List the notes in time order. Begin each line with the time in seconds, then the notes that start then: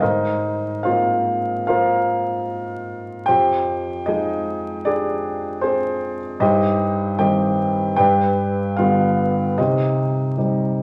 0.01 G#2 D#4 A#4 C5 D#5
0.83 G#3 A#3 C4 F4 C5 F5
1.67 F4 A#4 C5 F5
3.26 F2 G4 C5 G5
4.06 F3 G#3 D#4 G#4 D#5
4.85 D4 G4 G#4 D5
5.61 C4 G#4 C5
6.40 G2 D#4 G4 C5 D#5
7.19 D#3 G3 C4 G4 D#5 G5
7.96 G2 G4 B4 D5 G5
8.77 D3 G3 B3 F4 B4 F5
9.58 C3 D#4 G4 C5 D#5
10.38 G3 C4 D#4